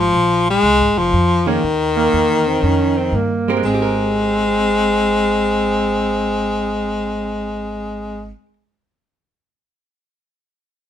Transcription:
Already playing: upright bass G#1
0.00 baritone saxophone F3
0.12 upright bass A#1
0.50 baritone saxophone G#3
0.63 upright bass C2
0.80 upright bass G#1
0.97 upright bass F1, baritone saxophone F3
1.13 upright bass F2
1.46 hollow-body jazz guitar D#3 A#3 C#4 G#4, baritone saxophone D#3
1.63 upright bass D#2
1.96 alto saxophone A#3
2.13 upright bass E2
2.47 alto saxophone C4
2.63 upright bass F2, alto saxophone C#4
2.97 alto saxophone C4
3.12 upright bass G2, alto saxophone A#3
3.48 hollow-body jazz guitar G#3 C4 G4 A#4
3.57 hollow-body jazz guitar G#3
3.63 upright bass G#1, baritone saxophone G#3, alto saxophone C4
3.67 hollow-body jazz guitar C4
3.74 hollow-body jazz guitar G4
3.82 hollow-body jazz guitar A#4

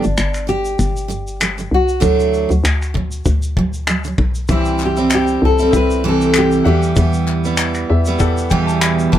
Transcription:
Already playing: nylon-string guitar D4
0.02 fm bass G1, steel-string acoustic guitar G2 D3 G3, shaker
0.18 fm bass G1, finger snap, shaker
0.34 finger snap, shaker
0.47 steel-string acoustic guitar G2 D3 G3, nylon-string guitar G4, shaker
0.65 shaker
0.79 fm bass G1, kick, shaker
0.97 shaker
1.08 steel-string acoustic guitar G2 D3 G3, shaker
1.27 shaker
1.40 steel-string acoustic guitar G2 D3 G3, finger snap, shaker
1.58 steel-string acoustic guitar G2 D3 G3, shaker
1.71 fm bass C2, nylon-string guitar F#4
1.89 shaker
2.00 fm bass D2, steel-string acoustic guitar D3 F#3 A3 D4 E4, kick, shaker
2.20 shaker
2.34 shaker
2.49 fm bass D2, steel-string acoustic guitar D3 F#3, shaker
2.64 fm bass D2, finger snap, shaker
2.82 finger snap, shaker
2.94 steel-string acoustic guitar D3 F#3, kick
3.12 shaker
3.25 fm bass D2, kick, shaker
3.42 shaker
3.57 steel-string acoustic guitar D3 F#3, kick
3.73 shaker
3.87 steel-string acoustic guitar D3 F#3, finger snap, shaker
4.04 steel-string acoustic guitar D3 F#3, shaker
4.18 fm bass B1, kick
4.35 shaker
4.48 fm bass C2, steel-string acoustic guitar E3 G3 C4 E4, grand piano C4 G4 E5, nylon-string guitar E4, kick, shaker
4.65 shaker
4.78 clap, shaker
4.85 nylon-string guitar G4
4.96 steel-string acoustic guitar G3 C4 E4, shaker
5.11 finger snap, clap, shaker
5.15 nylon-string guitar G4
5.27 shaker
5.42 fm bass C2, nylon-string guitar A4
5.59 steel-string acoustic guitar G3 C4 E4, shaker
5.71 fm bass C2, grand piano C4 G4 E5, kick, shaker
5.76 nylon-string guitar B4
5.90 shaker
6.04 steel-string acoustic guitar C3 E3 G3 C4 E4
6.08 nylon-string guitar A4
6.21 shaker
6.34 finger snap, clap, shaker
6.38 nylon-string guitar G4
6.51 shaker
6.63 fm bass E2, steel-string acoustic guitar E3 G3 B3, grand piano F#3 E5 F#5
6.68 grand piano G3, nylon-string guitar G4
6.83 shaker
6.96 fm bass E2, steel-string acoustic guitar E3 G3 B3, kick, shaker
7.13 shaker
7.28 clap
7.44 steel-string acoustic guitar E3 G3 B3, shaker
7.57 finger snap, clap, shaker
7.75 finger snap, shaker
7.90 fm bass E2, grand piano E5
8.05 steel-string acoustic guitar E3 G3 B3, shaker
8.19 fm bass E2, grand piano G3 G4 A4 F#5, kick, shaker
8.37 shaker
8.50 steel-string acoustic guitar E2 B2 E3 G3 B3, grand piano G5, kick, shaker
8.67 grand piano A5, shaker
8.81 grand piano B5, finger snap, clap, shaker
8.99 shaker
9.12 fm bass F#1, steel-string acoustic guitar E3 G3 B3 F#4, grand piano A5, kick

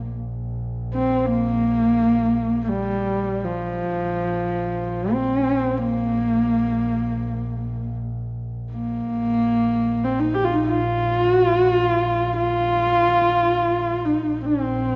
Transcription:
Already playing: double bass A#1, horsehead fiddle A#3
0.94 horsehead fiddle C4
1.26 horsehead fiddle A#3
2.64 horsehead fiddle A#3
2.69 horsehead fiddle G3
3.44 horsehead fiddle F3
3.92 double bass A#1
5.13 horsehead fiddle C4
5.77 horsehead fiddle A#3
8.72 horsehead fiddle A#3
9.11 double bass A#1
10.04 horsehead fiddle C4
10.20 horsehead fiddle D#4
10.34 horsehead fiddle G4
10.44 horsehead fiddle F4
10.52 horsehead fiddle D#4 F4
10.66 horsehead fiddle F4
11.26 horsehead fiddle F#4
11.42 horsehead fiddle F4
11.60 horsehead fiddle F#4
11.76 horsehead fiddle F4
12.37 horsehead fiddle F4
14.06 horsehead fiddle D#4
14.25 double bass A#1
14.46 horsehead fiddle C4

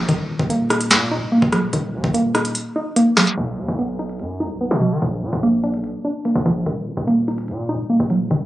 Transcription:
0.09 808-style bass D#1, synth pluck D#3, kick, closed hi-hat
0.29 808-style bass D1
0.39 808-style bass D#1, kick
0.50 synth pluck A#3, closed hi-hat
0.70 synth pluck D#4, cross-stick, closed hi-hat
0.81 closed hi-hat
0.91 808-style bass A#2, snare, clap, closed hi-hat
1.11 synth pluck D#4
1.17 808-style bass D#1
1.32 synth pluck A#3
1.42 808-style bass D#1, kick
1.52 synth pluck F#3, cross-stick, closed hi-hat
1.73 808-style bass D#1, synth pluck D#3, closed hi-hat
1.94 808-style bass D#2
2.04 808-style bass D#1, kick
2.14 synth pluck A#3, closed hi-hat
2.35 synth pluck D#4, cross-stick, closed hi-hat
2.45 closed hi-hat
2.55 closed hi-hat
2.76 synth pluck D#4
2.96 synth pluck A#3, closed hi-hat
3.17 synth pluck F#3, cross-stick, snare, clap, open hi-hat
3.27 snare
3.37 808-style bass B1, synth pluck B2
3.58 808-style bass D#2
3.68 808-style bass B1
3.79 synth pluck B3, closed hi-hat
3.99 synth pluck D#4, closed hi-hat
4.09 closed hi-hat
4.19 808-style bass F#2, closed hi-hat
4.40 synth pluck D#4
4.45 808-style bass B1
4.61 synth pluck B3
4.71 808-style bass B2
4.81 synth pluck F#3, closed hi-hat
4.92 808-style bass D#3
5.02 808-style bass A#1, synth pluck A#2, closed hi-hat
5.22 808-style bass A#2
5.33 808-style bass A#1
5.43 synth pluck A#3, closed hi-hat
5.63 synth pluck D4, closed hi-hat
5.74 808-style bass B1, closed hi-hat
5.84 closed hi-hat
6.05 synth pluck D4
6.25 synth pluck A#3, closed hi-hat
6.35 808-style bass A#1
6.46 808-style bass A#1, synth pluck F3, closed hi-hat
6.66 808-style bass D#1, synth pluck D#3, closed hi-hat
6.87 808-style bass D1
6.97 808-style bass D#1
7.07 synth pluck A#3, closed hi-hat
7.28 synth pluck D#4, closed hi-hat
7.38 closed hi-hat
7.48 808-style bass A#2, closed hi-hat
7.69 synth pluck D#4
7.74 808-style bass D#1
7.90 synth pluck A#3
8.00 808-style bass D#1
8.10 synth pluck F#3, closed hi-hat
8.31 808-style bass D#1, synth pluck D#3, closed hi-hat

